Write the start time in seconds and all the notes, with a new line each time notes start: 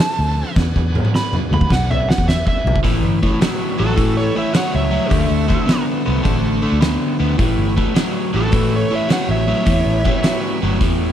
Already playing: C4 E4 F#4 A4 A5
0.00 snare
0.19 D2
0.55 E2 B3 D4 F#4 G#4, kick, snare
0.76 E2, kick
0.95 high tom
1.05 high tom
1.15 B5, snare
1.33 mid tom
1.51 D2 B5, mid tom
1.61 kick
1.70 B1 F#5, kick, snare
1.90 E5, mid tom
2.09 F#5, snare
2.18 E2, kick
2.28 E5, snare
2.47 E5, kick
2.64 B1, floor tom
2.76 kick
2.83 A1 A2 E3 G3 B3 C#4 E4, kick, open hi-hat
3.03 G1
3.23 A2 E3, kick
3.41 A2 F#3, snare, open hi-hat
3.78 A1 A2 F#3 F#4 A4
3.96 A2 E3, kick, open hi-hat
4.17 A4 C#5
4.35 A2 E3 C#5 E5
4.53 A2 F#3 C#5 F#5, snare, open hi-hat
4.75 C#2 C#5 E5
4.91 A2 F#3
5.09 D2 D3 A3 A#3 C#4 F4 G4, kick, open hi-hat
5.30 D2 A3 C4 E4 F#4
5.48 D3 A3, kick
5.66 D3 B3, snare, open hi-hat
6.05 C2 D3 B3
6.23 A1 D3 A3, kick, open hi-hat
6.62 D3 A3
6.72 D2
6.81 D3 B3, snare, open hi-hat
7.19 D2 D3 B3
7.38 A1 A2 E3 G3 B3 C#4 E4, kick, open hi-hat
7.58 G1
7.76 A2 E3, kick
7.95 A2 F#3, snare, open hi-hat
8.33 A1 A2 F#3 F#4 A4
8.52 A2 E3, kick, open hi-hat
8.75 A4 C#5
8.90 A2 E3 C#5
8.95 E5
9.08 A2 F#3, snare, open hi-hat
9.12 C#5 F#5
9.29 A1 C#5 E5
9.47 A2 F#3
9.65 E2 A2 E3 G3 B3 C#4 E4, kick, open hi-hat
9.86 A1
10.05 A2 E3, kick
10.23 A2 F#3, snare, open hi-hat
10.62 G1 A2 F#3
10.81 E2 A2 E3, kick, open hi-hat